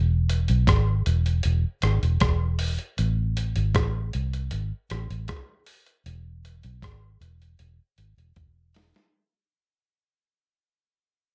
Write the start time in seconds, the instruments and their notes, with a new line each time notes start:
Already playing: fingered electric bass E1
0.29 closed hi-hat
0.48 fingered electric bass B1, closed hi-hat
0.67 fingered electric bass G#1, kick, cross-stick, closed hi-hat
1.06 fingered electric bass E1, closed hi-hat
1.26 closed hi-hat
1.43 fingered electric bass E1, closed hi-hat
1.82 fingered electric bass G#1, cross-stick, closed hi-hat
2.03 fingered electric bass E1, closed hi-hat
2.20 fingered electric bass E1, kick, cross-stick, closed hi-hat
2.59 open hi-hat
2.79 closed hi-hat
2.98 fingered electric bass A1, closed hi-hat
3.37 closed hi-hat
3.56 fingered electric bass G#1, closed hi-hat
3.75 fingered electric bass A1, kick, cross-stick, closed hi-hat
4.13 fingered electric bass C2, closed hi-hat
4.33 closed hi-hat
4.51 fingered electric bass G#1, closed hi-hat
4.90 fingered electric bass A1, cross-stick, closed hi-hat
5.10 fingered electric bass A1, closed hi-hat
5.28 kick, cross-stick, closed hi-hat
5.66 open hi-hat
5.86 closed hi-hat
6.06 fingered electric bass E1, closed hi-hat
6.45 closed hi-hat
6.63 fingered electric bass B1, closed hi-hat
6.82 fingered electric bass G#1, kick, cross-stick, closed hi-hat
7.21 fingered electric bass E1, closed hi-hat
7.42 closed hi-hat
7.59 fingered electric bass E1, closed hi-hat
7.98 fingered electric bass G#1, closed hi-hat
8.17 fingered electric bass E1, closed hi-hat
8.36 fingered electric bass E1, kick, closed hi-hat
8.74 snare, open hi-hat
8.94 snare, closed hi-hat